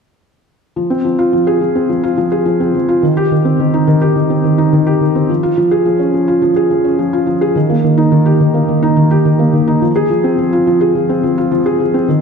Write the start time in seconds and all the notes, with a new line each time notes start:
0.76 F3
0.90 C4
1.05 F3
1.19 F4
1.33 F3
1.47 G#4
1.61 F3
1.75 C4
1.89 F3
2.03 F4
2.17 F3
2.32 G#4
2.46 F3
2.60 C4
2.74 F3
2.89 F4
3.03 D#3
3.17 G4
3.31 D#3
3.45 C4
3.59 D#3
3.74 D#4
3.87 D#3
4.01 G4
4.16 D#3
4.30 C4
4.44 D#3
4.58 D#4
4.73 D#3
4.87 G4
5.01 D#3
5.15 C4
5.29 F3
5.43 F4
5.57 F3
5.71 G#4
5.85 F3
6.00 C#4
6.14 F3
6.28 F4
6.42 F3
6.56 G#4
6.70 F3
6.85 C#4
6.99 F3
7.13 F4
7.27 F3
7.41 G#4
7.55 D#3
7.70 A#3
7.84 D#3
7.98 D#4
8.12 D#3
8.26 G4
8.40 D#3
8.54 A#3
8.69 D#3
8.83 D#4
8.97 D#3
9.11 G4
9.25 D#3
9.39 A#3
9.53 D#3
9.67 D#4
9.82 F3
9.96 G#4
10.10 F3
10.24 C4
10.38 F3
10.53 F4
10.67 F3
10.81 G#4
10.95 F3
11.09 C4
11.24 F3
11.38 F4
11.51 F3
11.66 G#4
11.80 F3
11.94 C4
12.08 D#3